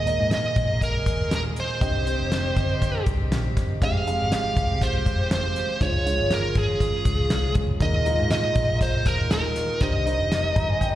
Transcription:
0.00 0.18 D#2 medium
0.00 0.52 A#2 medium
0.00 3.77 D#3 medium
0.00 1.77 G#3 medium
0.00 1.79 A#3 medium
0.00 1.79 G#4 medium
0.00 0.29 D#5 medium
0.06 0.81 A#3 medium
0.06 0.82 G#4 medium
0.06 0.82 D#5 medium
0.06 closed hi-hat medium
0.20 0.54 G#2 medium
0.31 0.79 D#5 medium
0.31 snare medium
0.31 closed hi-hat medium
0.56 1.06 A#1 medium
0.56 kick medium
0.56 closed hi-hat soft
0.81 1.34 A#4 medium
0.81 kick medium
0.81 closed hi-hat medium
1.06 1.53 D#2 medium
1.06 kick medium
1.06 closed hi-hat medium
1.31 1.41 A#4 medium
1.31 snare loud
1.31 closed hi-hat medium
1.56 3.04 C5 medium
1.56 closed hi-hat medium
1.81 2.18 C2 loud
1.81 2.53 G2 medium
1.81 3.79 G3 medium
1.81 2.01 C4 medium
1.81 3.79 C4 medium
1.81 3.79 G4 medium
1.81 2.01 G4 medium
1.81 2.01 D#5 medium
1.81 kick medium
1.81 closed hi-hat medium
2.07 2.82 C4 medium
2.07 2.82 G4 medium
2.07 2.82 C5 medium
2.07 closed hi-hat medium
2.20 2.54 F1 medium
2.32 snare medium
2.32 closed hi-hat medium
2.56 3.03 G1 medium
2.56 kick medium
2.56 closed hi-hat soft
2.82 kick medium
2.82 closed hi-hat medium
3.06 3.30 C2 medium
3.06 kick medium
3.06 closed hi-hat medium
3.32 3.57 A#1 medium
3.32 snare loud
3.32 closed hi-hat medium
3.57 3.80 G1 medium
3.57 kick medium
3.57 snare soft
3.57 closed hi-hat medium
3.82 4.21 F1 loud
3.82 4.53 C3 soft
3.82 5.79 F3 medium
3.82 4.01 G#3 medium
3.82 5.79 G#3 medium
3.82 5.80 C4 medium
3.82 4.01 G4 medium
3.82 5.80 G4 medium
3.82 4.01 F5 medium
3.82 4.32 F5 medium
3.82 kick medium
3.82 closed hi-hat medium
4.07 4.82 G#3 medium
4.07 4.82 G4 medium
4.07 4.82 F5 medium
4.07 closed hi-hat medium
4.21 4.54 G#1 medium
4.32 4.84 F5 medium
4.32 snare medium
4.32 closed hi-hat medium
4.57 5.03 C2 medium
4.57 kick medium
4.57 closed hi-hat medium
4.82 5.29 C5 medium
4.82 kick medium
4.82 closed hi-hat medium
5.06 5.53 F1 medium
5.06 kick medium
5.06 closed hi-hat medium
5.31 5.82 C5 medium
5.31 snare loud
5.31 closed hi-hat medium
5.56 snare soft
5.56 closed hi-hat medium
5.80 6.17 C#2 medium
5.80 7.79 C#3 medium
5.80 7.79 F3 medium
5.80 9.76 G#3 medium
5.80 6.01 G#3 medium
5.80 7.79 F4 medium
5.80 6.01 F4 medium
5.80 6.01 C#5 medium
5.80 6.33 C#5 medium
5.80 kick medium
5.80 closed hi-hat medium
6.06 6.81 G#3 medium
6.06 6.81 F4 medium
6.06 6.82 C#5 medium
6.06 closed hi-hat medium
6.20 6.54 G1 medium
6.31 6.58 A#4 medium
6.31 snare medium
6.31 closed hi-hat medium
6.55 7.02 G#1 medium
6.55 7.53 G#4 medium
6.55 kick medium
6.55 closed hi-hat medium
6.80 kick medium
6.80 closed hi-hat medium
7.05 7.29 C#2 medium
7.05 kick medium
7.05 closed hi-hat medium
7.30 7.54 C2 medium
7.30 snare loud
7.30 closed hi-hat medium
7.55 7.79 C#2 medium
7.55 kick medium
7.55 closed hi-hat medium
7.80 8.17 D#2 loud
7.80 9.79 A#2 medium
7.80 8.52 A#2 medium
7.80 10.95 D#3 medium
7.80 8.00 G#3 medium
7.80 10.95 D#4 medium
7.80 8.01 D#4 medium
7.80 8.01 A#4 medium
7.80 8.30 D#5 medium
7.80 kick medium
7.80 closed hi-hat medium
8.06 8.81 G#3 medium
8.06 8.81 D#4 medium
8.06 8.81 F4 medium
8.06 closed hi-hat medium
8.19 8.53 G#2 medium
8.31 8.78 D#5 medium
8.31 snare medium
8.31 closed hi-hat medium
8.55 9.06 A#1 medium
8.55 kick medium
8.55 closed hi-hat soft
8.81 9.07 C5 medium
8.81 kick medium
8.81 closed hi-hat medium
9.06 9.52 D#2 loud
9.06 9.31 A#4 medium
9.06 kick medium
9.06 closed hi-hat medium
9.31 9.83 A#4 medium
9.31 snare loud
9.31 closed hi-hat medium
9.56 snare soft
9.56 closed hi-hat medium
9.81 10.17 C2 loud
9.81 10.52 G2 medium
9.81 10.95 C3 medium
9.81 10.95 G3 medium
9.81 10.01 G3 medium
9.81 10.01 D#4 medium
9.81 10.01 C5 medium
9.81 10.95 D#5 medium
9.81 kick medium
9.81 closed hi-hat medium
10.06 10.81 G3 medium
10.06 10.81 D#4 medium
10.06 10.81 C5 medium
10.06 closed hi-hat medium
10.20 10.54 F1 medium
10.32 snare loud
10.32 closed hi-hat medium
10.55 10.95 G1 medium
10.55 10.69 A#5 medium
10.55 kick medium
10.55 closed hi-hat medium
10.69 10.80 G#5 medium
10.81 10.95 G5 medium
10.81 kick medium
10.81 closed hi-hat medium

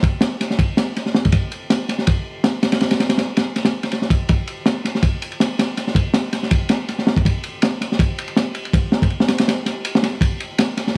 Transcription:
0.03 kick medium
0.03 ride medium
0.21 snare loud
0.21 ride medium
0.41 snare soft
0.41 ride medium
0.50 snare soft
0.59 kick loud
0.59 ride medium
0.77 snare loud
0.77 ride medium
0.96 snare soft
0.96 ride medium
1.06 snare soft
1.15 snare loud
1.25 kick medium
1.25 ride medium
1.32 kick loud
1.32 ride medium
1.52 ride medium
1.70 snare loud
1.70 ride medium
1.89 snare soft
1.89 ride medium
1.98 snare soft
2.07 kick loud
2.07 ride medium
2.44 snare loud
2.44 ride medium
2.63 snare loud
2.63 ride medium
2.72 snare loud
2.72 ride medium
2.81 snare loud
2.81 ride medium
2.91 snare loud
2.91 ride medium
3.00 snare loud
3.00 ride medium
3.09 snare loud
3.09 ride medium
3.18 snare loud
3.18 ride medium
3.37 snare loud
3.37 ride medium
3.56 snare soft
3.56 ride medium
3.65 snare loud
3.65 ride medium
3.83 snare soft
3.83 ride medium
3.92 snare soft
3.92 ride medium
4.02 snare soft
4.10 kick loud
4.10 ride medium
4.29 kick loud
4.29 ride medium
4.47 ride medium
4.66 snare loud
4.66 ride medium
4.85 snare soft
4.85 ride medium
4.95 snare soft
5.03 kick loud
5.03 ride medium
5.22 ride medium
5.32 ride soft
5.40 snare loud
5.40 ride medium
5.59 snare loud
5.59 ride medium
5.77 snare soft
5.77 ride medium
5.87 snare soft
5.95 kick medium
5.95 ride medium
6.14 snare loud
6.14 ride medium
6.33 snare medium
6.33 ride medium
6.43 snare soft
6.51 kick loud
6.51 ride medium
6.69 snare loud
6.69 ride medium
6.89 snare soft
6.89 ride medium
6.99 snare soft
7.07 snare loud
7.16 kick medium
7.16 ride medium
7.25 kick loud
7.25 ride medium
7.44 ride medium
7.62 snare loud
7.62 ride medium
7.81 snare soft
7.81 ride medium
7.92 snare soft
7.99 kick loud
7.99 ride medium
8.18 ride medium
8.28 ride soft
8.37 snare loud
8.37 ride medium
8.55 ride medium
8.65 ride soft
8.73 kick loud
8.73 ride medium
8.92 snare loud
9.02 kick medium
9.02 ride medium
9.10 ride soft
9.20 snare loud
9.28 snare loud
9.28 ride medium
9.38 snare loud
9.38 ride medium
9.48 snare loud
9.48 ride medium
9.66 snare soft
9.66 ride medium
9.85 ride medium
9.95 snare loud
10.03 snare loud
10.03 ride medium
10.21 kick loud
10.21 ride medium
10.40 ride medium
10.58 snare loud
10.58 ride medium
10.77 snare soft
10.77 ride medium
10.87 snare soft

